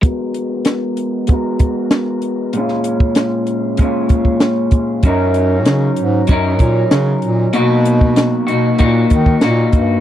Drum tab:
HH |x-x-x-x-x-x-x-x-|x-x-x-x-x-x-x-x-|x-x-x-x-x-x-x-x-|x-x-x-x-x-x-x-x-|
SD |----o-------o---|-o--o-------o---|----o-------o---|----o-------o---|
BD |o-------o-o-----|---o----o-oo--o-|o-------o-o-----|---o----o-oo--o-|